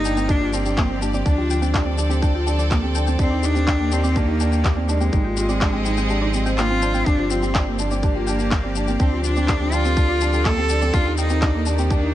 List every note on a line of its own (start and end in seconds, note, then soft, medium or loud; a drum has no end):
0.00 1.23 G1 medium
0.00 3.20 F3 medium
0.00 1.26 A#3 medium
0.00 0.32 D#4 loud
0.00 2.03 G4 medium
0.00 5.14 D5 medium
0.05 0.12 D4 medium
0.05 0.10 G5 medium
0.05 shaker medium
0.17 0.25 C4 medium
0.17 0.25 G5 medium
0.17 shaker soft
0.28 0.36 D4 medium
0.28 0.55 D4 loud
0.28 0.34 G4 medium
0.28 kick loud
0.28 shaker soft
0.40 0.48 F4 medium
0.40 0.49 D5 loud
0.53 1.03 C4 loud
0.53 0.61 D4 medium
0.53 0.58 G4 medium
0.53 shaker medium
0.65 0.73 D4 medium
0.65 0.71 G4 loud
0.65 shaker soft
0.77 0.85 A#3 medium
0.77 0.82 G5 loud
0.77 kick loud
0.77 clap medium
0.77 shaker soft
0.90 0.97 C4 medium
0.90 0.98 G5 medium
1.02 1.28 A#3 medium
1.02 1.09 D4 medium
1.02 1.07 G4 medium
1.02 shaker medium
1.14 1.22 C4 medium
1.14 1.22 D5 loud
1.14 shaker soft
1.26 3.17 D2 medium
1.26 1.33 D4 medium
1.26 1.75 D4 medium
1.26 1.31 G4 medium
1.26 kick loud
1.26 shaker soft
1.38 1.45 F4 medium
1.38 1.43 G4 loud
1.49 1.57 F4 medium
1.49 1.55 G5 loud
1.49 shaker medium
1.60 3.90 C4 medium
1.60 1.69 C4 medium
1.60 1.70 G5 medium
1.60 shaker soft
1.74 1.82 D4 medium
1.74 1.79 G4 medium
1.74 kick loud
1.74 clap medium
1.74 shaker soft
1.82 1.93 C4 medium
1.82 3.97 A4 medium
1.82 1.94 D5 loud
1.98 2.06 D4 medium
1.98 2.03 G4 medium
1.98 shaker medium
2.09 2.17 C4 medium
2.09 2.15 G4 loud
2.09 shaker soft
2.22 2.30 D4 loud
2.22 2.27 G5 loud
2.22 kick loud
2.22 shaker soft
2.34 2.42 F4 medium
2.34 2.43 G5 medium
2.46 2.54 D4 medium
2.46 2.52 G4 medium
2.46 shaker medium
2.58 2.66 D4 medium
2.58 2.67 D5 loud
2.58 shaker soft
2.71 2.79 A#3 medium
2.71 2.76 G4 medium
2.71 kick medium
2.71 clap medium
2.71 shaker soft
2.83 2.91 C4 medium
2.83 2.88 G4 loud
2.95 3.03 D4 medium
2.95 3.00 G5 loud
2.95 shaker medium
3.07 3.15 C4 medium
3.07 3.15 G5 medium
3.07 shaker soft
3.19 5.10 D#2 medium
3.19 5.13 D#3 medium
3.19 3.46 C4 medium
3.19 3.27 D4 medium
3.19 3.24 G4 medium
3.19 kick loud
3.19 shaker soft
3.29 3.39 D#4 medium
3.29 5.13 G4 medium
3.29 3.39 D5 loud
3.42 3.94 D4 loud
3.42 3.51 D#4 medium
3.42 3.48 G4 medium
3.42 shaker medium
3.55 5.91 A#3 medium
3.55 3.63 C4 medium
3.55 3.60 G4 loud
3.55 shaker soft
3.67 3.76 D4 medium
3.67 3.72 G5 loud
3.67 kick loud
3.67 clap medium
3.67 shaker soft
3.79 3.87 A#3 medium
3.79 3.88 G5 medium
3.91 4.19 C4 loud
3.91 4.00 D4 medium
3.91 3.96 G4 medium
3.91 shaker medium
4.03 4.12 C4 medium
4.03 4.12 D5 loud
4.03 shaker soft
4.15 4.91 A#3 loud
4.15 4.24 D4 medium
4.15 4.21 G4 medium
4.15 kick loud
4.15 shaker soft
4.28 4.36 D#4 medium
4.28 4.33 G4 loud
4.40 4.48 D4 medium
4.40 4.45 G5 loud
4.40 shaker medium
4.52 4.60 D4 medium
4.52 4.60 G5 medium
4.52 shaker soft
4.64 4.72 A#3 medium
4.64 4.69 G4 medium
4.64 kick loud
4.64 clap medium
4.64 shaker soft
4.76 4.84 C4 medium
4.76 4.85 D5 loud
4.89 6.57 G#3 loud
4.89 4.96 D4 medium
4.89 4.94 G4 medium
4.89 shaker medium
5.00 5.09 C4 medium
5.00 5.06 G4 loud
5.00 shaker soft
5.13 7.04 G#1 loud
5.13 10.94 F3 medium
5.13 5.20 D#4 medium
5.13 5.18 G5 loud
5.13 kick loud
5.13 shaker soft
5.24 5.33 F4 medium
5.24 5.33 G5 medium
5.34 7.84 C4 medium
5.34 5.45 F4 medium
5.34 5.42 G4 medium
5.34 shaker medium
5.38 7.07 D#5 medium
5.46 5.57 C4 medium
5.46 7.07 G#4 medium
5.46 5.57 D5 loud
5.46 shaker soft
5.61 5.69 D4 medium
5.61 5.66 G4 medium
5.61 kick loud
5.61 clap medium
5.61 shaker soft
5.73 5.81 C4 medium
5.73 5.78 G4 loud
5.85 5.93 D#4 medium
5.85 5.90 G5 medium
5.85 shaker medium
5.97 6.05 C4 medium
5.97 6.06 G5 medium
5.97 shaker soft
6.09 6.17 D4 medium
6.09 6.14 G4 medium
6.09 shaker soft
6.21 6.29 D#4 medium
6.21 6.30 D5 loud
6.33 6.42 C4 medium
6.33 6.39 G4 medium
6.33 shaker medium
6.46 6.53 C4 medium
6.46 6.58 G5 loud
6.46 shaker soft
6.58 6.66 A#3 medium
6.58 6.63 D4 medium
6.58 7.08 F4 loud
6.58 clap medium
6.58 shaker soft
6.70 6.78 C4 medium
6.70 6.78 F4 medium
6.82 6.90 D4 medium
6.82 6.94 C5 loud
6.82 shaker medium
6.94 7.02 C4 medium
6.94 7.02 G5 loud
6.94 shaker soft
7.06 8.98 G1 loud
7.06 7.32 D4 loud
7.06 7.14 D4 medium
7.06 7.12 G4 medium
7.06 kick loud
7.06 shaker soft
7.18 7.26 F4 medium
7.18 7.27 D5 loud
7.30 7.79 C4 loud
7.30 7.38 F4 medium
7.30 7.36 G4 medium
7.30 shaker medium
7.43 9.00 A#3 medium
7.43 7.51 C4 medium
7.43 7.48 G4 loud
7.43 shaker soft
7.55 7.63 D4 medium
7.55 7.60 G5 loud
7.55 kick loud
7.55 clap loud
7.55 shaker soft
7.67 7.75 A#3 medium
7.67 7.75 G4 medium
7.73 12.14 D5 medium
7.79 7.87 D4 medium
7.79 7.84 G4 medium
7.79 9.77 G4 medium
7.79 shaker medium
7.91 7.99 C4 medium
7.91 7.99 D5 loud
7.91 shaker soft
8.03 9.03 A#3 medium
8.03 8.11 D4 medium
8.03 8.08 G4 medium
8.03 kick loud
8.03 shaker soft
8.15 8.23 F4 medium
8.15 8.20 G4 loud
8.27 8.36 D4 medium
8.27 8.32 G5 loud
8.27 shaker medium
8.39 8.48 D4 medium
8.39 8.47 G4 medium
8.39 shaker soft
8.51 8.60 A#3 medium
8.51 8.57 G4 medium
8.51 kick loud
8.51 clap medium
8.51 shaker soft
8.63 8.72 C4 medium
8.63 8.72 D5 loud
8.75 8.84 D4 medium
8.75 8.81 G4 medium
8.75 shaker medium
8.88 8.96 C4 medium
8.88 8.93 G4 loud
8.88 shaker soft
9.00 10.91 D2 medium
9.00 9.24 C4 medium
9.00 9.08 D4 medium
9.00 9.05 G5 loud
9.00 kick loud
9.00 shaker soft
9.12 11.71 C4 medium
9.12 9.20 F4 medium
9.12 9.20 G4 medium
9.24 9.75 D4 loud
9.24 9.32 F4 medium
9.24 9.29 G4 medium
9.24 shaker medium
9.36 9.44 C4 medium
9.36 9.45 D5 loud
9.36 shaker soft
9.43 11.62 A4 medium
9.48 9.56 D4 medium
9.48 9.53 G4 medium
9.48 kick loud
9.48 clap medium
9.48 shaker soft
9.60 9.69 C4 medium
9.60 9.65 G4 loud
9.72 9.81 D4 medium
9.72 10.47 F4 loud
9.72 9.77 G5 loud
9.72 shaker medium
9.85 9.93 C4 medium
9.85 9.93 G4 medium
9.85 shaker soft
9.97 10.05 D4 medium
9.97 10.02 G4 medium
9.97 kick loud
9.97 shaker soft
10.09 10.17 F4 medium
10.09 10.17 D5 loud
10.21 10.29 D4 medium
10.21 10.26 G4 medium
10.21 shaker medium
10.33 10.41 D4 medium
10.33 10.38 G4 loud
10.33 shaker soft
10.45 10.53 A#3 medium
10.45 10.95 A4 loud
10.45 10.50 G5 loud
10.45 kick loud
10.45 clap medium
10.45 shaker soft
10.58 10.65 C4 medium
10.58 10.66 G4 medium
10.69 10.78 D4 medium
10.69 10.74 G4 medium
10.69 shaker medium
10.82 10.90 C4 medium
10.82 10.90 D5 loud
10.82 shaker soft
10.93 12.14 D#2 medium
10.93 12.14 D#3 medium
10.93 11.02 D4 medium
10.93 11.17 F4 loud
10.93 10.99 G4 medium
10.93 kick loud
10.93 shaker soft
11.06 11.14 D#4 medium
11.06 11.11 G4 loud
11.18 12.14 A#3 medium
11.18 11.25 D#4 medium
11.18 11.63 D#4 loud
11.18 11.23 G5 loud
11.18 shaker medium
11.30 11.38 C4 medium
11.30 11.38 G4 medium
11.30 shaker soft
11.42 11.50 D4 medium
11.42 11.47 G4 medium
11.42 kick loud
11.42 clap medium
11.42 shaker soft
11.54 11.62 A#3 medium
11.54 11.63 D5 loud
11.66 11.74 D4 medium
11.66 11.71 G4 medium
11.66 12.14 G4 medium
11.66 shaker medium
11.78 11.86 C4 medium
11.78 11.84 G4 loud
11.78 shaker soft
11.90 11.98 D4 medium
11.90 12.14 D4 loud
11.90 11.95 G5 loud
11.90 kick loud
11.90 shaker soft
12.03 12.10 D#4 medium
12.03 12.11 G4 medium